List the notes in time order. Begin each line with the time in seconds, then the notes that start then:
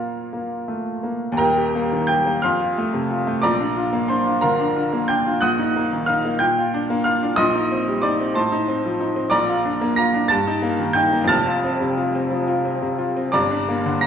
Already playing: A#2 A#3 F4 A#4 F5 A#5
0.33 A#3
0.68 A3
1.03 A#3
1.32 D#2
1.37 D#1 A#4 G5 A#5
1.57 G4
1.75 A#3
1.92 D#3
2.07 G4 G5 G6
2.26 A#3
2.42 F2 F5 C6 F6
2.60 F4
2.78 A3
2.94 C3
3.11 F4
3.27 A3
3.42 A#1 A#2 D5 A#5 D6
3.60 D4
3.77 F4
3.93 A#3
4.08 D4 C5 C6
4.27 F4
4.41 D3 A#4 F5 A#5
4.60 D4
4.76 F4
4.93 A#3
5.08 D4 G5 G6
5.26 F4
5.41 A#1 A#2 F#5 D#6 F#6
5.59 D#4
5.76 A#3
5.93 D#3
6.06 D#4 F5 F6
6.25 A#3
6.39 A#2 G5 G6
6.58 F4
6.74 D4
6.90 A#3
7.04 F4 F5 F6
7.23 D4
7.36 A#1 A#2 D#5 C6 D#6
7.55 D#4
7.72 C4
7.88 G3
8.02 D#4 D5 D6
8.20 C4
8.34 A2 C5 A5 C6
8.52 D#4
8.68 C4
8.85 F3
9.00 D#4
9.16 C4
9.30 A#1 A#2 D5 A#5 D6
9.49 F4
9.65 D4
9.81 A#3
9.96 F4 A#5 A#6
10.14 D4
10.28 G2 A5 A6
10.47 D#4
10.62 A#3
10.79 D#3
10.93 D#4 G5 G6
11.13 A#3
11.24 F2 A6
11.29 F1 A5 F6
11.47 F4
11.64 C4
11.81 C3
11.97 F4
12.15 C4
12.31 F3
12.47 F4
12.65 C4
12.82 C3
12.98 F4
13.17 C4
13.32 G1 G2 D5 A#5 D6
13.51 D4
13.69 A#3
13.86 D3
14.01 D4 A#5 A#6